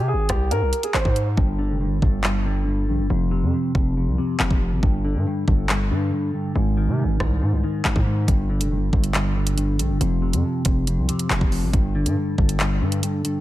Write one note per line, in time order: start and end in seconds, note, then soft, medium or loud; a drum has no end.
0.00 0.15 C3 loud
0.08 0.28 G#4 medium
0.13 0.29 G#1 loud
0.29 0.53 C2 loud
0.29 0.50 G4 medium
0.29 kick medium
0.29 cross-stick loud
0.29 closed hi-hat medium
0.51 0.63 G#2 loud
0.51 0.82 A#4 medium
0.51 closed hi-hat medium
0.62 0.72 C2 loud
0.73 closed hi-hat medium
0.83 0.94 G#4 medium
0.83 closed hi-hat medium
0.94 1.05 G#1 loud
0.94 1.14 C5 medium
0.94 clap loud
1.05 1.36 G#2 loud
1.05 kick loud
1.16 closed hi-hat medium
1.37 1.71 G1 loud
1.37 1.79 G2 loud
1.37 kick loud
1.58 2.45 D3 medium
1.70 1.87 F1 loud
1.81 2.01 G2 medium
1.86 2.01 G1 loud
2.02 2.90 G1 loud
2.02 2.23 G2 medium
2.02 kick medium
2.24 2.65 G2 medium
2.24 clap loud
2.46 3.10 D3 medium
2.67 2.88 G2 medium
2.89 3.01 A#1 loud
2.89 3.10 G2 medium
2.99 3.10 G1 loud
3.10 3.44 F1 loud
3.10 3.52 F2 medium
3.31 4.17 C3 medium
3.43 3.53 F2 medium
3.54 3.74 F2 medium
3.75 4.09 F1 loud
3.75 3.96 F2 medium
3.75 kick medium
3.97 4.38 F2 medium
4.07 4.18 C2 loud
4.18 4.83 C3 medium
4.40 4.50 F1 loud
4.40 4.60 F2 medium
4.40 clap loud
4.51 4.74 F1 loud
4.51 kick medium
4.61 4.82 F2 medium
4.72 4.82 G#1 loud
4.83 5.17 G1 loud
4.83 5.26 G2 medium
4.83 kick loud
5.04 5.90 D3 medium
5.15 5.25 G2 loud
5.27 5.47 G2 medium
5.48 5.92 G1 loud
5.48 5.68 G2 medium
5.48 kick medium
5.69 6.11 G2 medium
5.69 clap loud
5.91 6.11 G2 loud
5.91 6.56 D3 medium
6.13 6.33 G2 medium
6.34 6.55 G2 medium
6.55 6.89 G#1 loud
6.55 6.98 G#2 medium
6.77 7.62 D#3 medium
6.88 7.06 C3 loud
6.99 7.18 G#2 medium
7.04 7.19 G#1 loud
7.20 7.43 C2 loud
7.20 7.40 G#2 medium
7.20 kick medium
7.20 cross-stick loud
7.41 7.84 G#2 medium
7.41 7.54 G#2 loud
7.53 7.63 C2 loud
7.64 8.28 D#3 medium
7.85 7.95 G#1 loud
7.85 8.05 G#2 medium
7.85 clap loud
7.96 8.27 G#2 loud
7.96 kick loud
8.06 8.28 G#2 medium
8.28 8.62 G1 loud
8.28 8.70 G2 loud
8.28 kick loud
8.28 closed hi-hat medium
8.49 9.35 D3 medium
8.60 8.78 F1 medium
8.60 closed hi-hat medium
8.71 8.92 G2 medium
8.77 8.92 G1 loud
8.93 9.81 G1 loud
8.93 9.13 G2 medium
8.93 kick medium
9.04 closed hi-hat medium
9.14 9.56 G2 medium
9.14 clap loud
9.14 closed hi-hat soft
9.37 10.01 D3 medium
9.47 closed hi-hat medium
9.57 9.78 G2 medium
9.57 closed hi-hat medium
9.79 9.91 A#1 loud
9.79 10.01 G2 medium
9.79 closed hi-hat medium
9.90 10.00 G1 loud
10.01 10.35 F1 loud
10.01 10.43 F2 medium
10.01 closed hi-hat medium
10.22 11.08 C3 medium
10.33 10.43 F2 loud
10.33 closed hi-hat medium
10.44 10.64 F2 medium
10.65 10.99 F1 loud
10.65 10.86 F2 medium
10.65 kick medium
10.65 closed hi-hat medium
10.87 11.29 F2 medium
10.87 closed hi-hat medium
10.98 11.08 C2 loud
11.09 11.74 C3 medium
11.09 closed hi-hat medium
11.19 closed hi-hat medium
11.30 11.41 F1 loud
11.30 11.51 F2 medium
11.30 clap loud
11.41 11.64 F1 loud
11.41 kick medium
11.52 11.73 F2 medium
11.52 open hi-hat medium
11.63 11.73 G#1 loud
11.73 12.07 G1 loud
11.73 12.16 G2 medium
11.73 kick loud
11.73 closed hi-hat medium
11.95 12.80 D3 medium
12.06 12.16 G2 loud
12.06 closed hi-hat medium
12.17 12.37 G2 medium
12.38 12.83 G1 loud
12.38 12.59 G2 medium
12.38 kick medium
12.49 closed hi-hat medium
12.60 13.02 G2 medium
12.60 clap loud
12.60 closed hi-hat soft
12.81 13.02 G2 loud
12.81 13.40 D3 medium
12.92 closed hi-hat medium
13.03 13.24 G2 medium
13.03 closed hi-hat medium
13.25 13.40 G2 medium
13.25 closed hi-hat medium